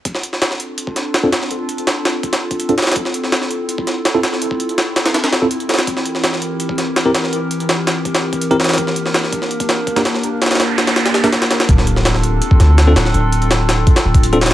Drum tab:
HH |x---x---x---x---x---x---x---x---|x---x-x-x---x---x-x---x-x-x-xxxx|x---x---x---x---x---x---x---x---|x---x-x-x---x-x-x-x-x---x-x-xxx-|
SD |--o---o-o-o---------o---o---o-o-|--------o---o-----o---------oooo|--o---o-o-o---------o---o---o-o-|--------o---o-o-o-o-o-------ooo-|
BD |o-----------------o-------------|----------------o-----o---------|o-----------------o-------------|--o-----------------------------|

HH |x---x---x---x---x---x---x---x---|x---x-x-x---x---x-x---x-x-x-xxxx|x---x---x---x---x-x-x---x-x-x---|x---xxxxx---x-x-x-x-x-x-x-x-x-x-|
SD |--o---o-o-o---------o---o---o-o-|--------o---o-----o---------oooo|--o---o-o-o---o-----o-----o-o-o-|----ooooo---o-o-o-o-o-o-o-o-o-o-|
BD |o-----------------o-------------|----------------o-----o---------|o-----------o-----o-----o-------|--------------------------------|

HH |x---x---x---x---x---x---x---x---|x---x-x-x---x---x-x---x-x-x-xx--|
SD |--o---o-o-o---------o---o---o-o-|--------o---o-----o---------oo--|
BD |o-----------------o-------------|----------------o-----o---------|